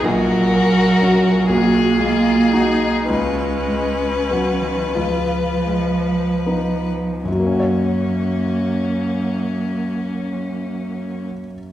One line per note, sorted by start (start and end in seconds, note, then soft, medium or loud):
0.04 1.45 A#1 medium
0.04 1.51 F#3 medium
0.04 1.50 F#4 medium
0.04 1.51 A#4 medium
0.53 1.30 A#3 soft
1.02 1.46 C#4 soft
1.02 1.46 F#4 soft
1.49 3.05 B1 medium
1.49 3.10 A#3 medium
1.49 2.00 F#4 medium
1.49 3.06 G#4 medium
1.98 2.87 G#3 soft
1.98 2.53 F4 medium
2.52 3.09 D#4 medium
2.52 3.05 D#4 soft
2.52 3.06 F#4 soft
3.09 4.91 C#2 medium
3.09 4.29 G#3 medium
3.09 4.97 C#4 medium
3.09 6.89 B4 medium
3.68 4.69 G#3 soft
4.30 4.63 F#3 medium
4.30 4.92 B3 soft
4.30 4.92 F#4 soft
4.61 4.98 D#3 medium
4.95 7.22 C#2 soft
4.95 7.25 F3 medium
4.95 6.05 F4 soft
5.67 6.95 G#3 soft
6.46 7.22 B3 soft
6.46 7.22 D#4 soft
7.25 11.24 F#2 soft
7.25 11.25 F#3 medium
7.25 11.25 A#3 soft
7.25 11.25 C#4 soft
7.32 11.31 F#3 soft
7.39 11.38 A#3 soft
7.46 11.45 C#4 soft
7.53 11.52 F#4 soft
7.60 11.59 C#5 soft